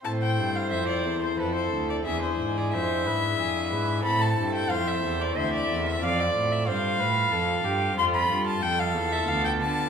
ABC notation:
X:1
M:3/4
L:1/16
Q:1/4=91
K:Am
V:1 name="Violin"
a g2 f e d2 c B c2 d | e c2 d e8 | b a2 g f e2 d c d2 e | f d2 e f8 |
c' b2 a g f2 e f g a2 |]
V:2 name="Violin"
c8 A4 | ^G4 c2 B2 G2 B2 | A4 c4 e4 | d4 c2 B2 A2 G2 |
F4 A8 |]
V:3 name="Pipe organ"
[CEA]12 | [DE^G]12 | [CEA]12 | [CFA]12 |
[CFA]8 [B,FB]4 |]
V:4 name="Pipe organ" clef=bass
A,,2 G,,2 F,,2 E,,2 F,,2 D,,2 | E,,2 ^G,,2 F,,2 G,,2 F,,2 G,,2 | A,,2 G,,2 F,,2 E,,2 D,,2 E,,2 | F,,2 A,,2 G,,2 A,,2 F,,2 G,,2 |
F,,2 G,,2 F,,2 E,,2 D,,2 D,2 |]
V:5 name="Cello" clef=bass
A,,2 G,,2 F,,2 E,,2 F,,2 D,,2 | E,,2 ^G,,2 F,,2 G,,2 F,,2 G,,2 | A,,2 G,,2 F,,2 E,,2 D,,2 E,,2 | F,,2 A,,2 G,,2 A,,2 F,,2 G,,2 |
F,,2 G,,2 F,,2 E,,2 D,,2 D,2 |]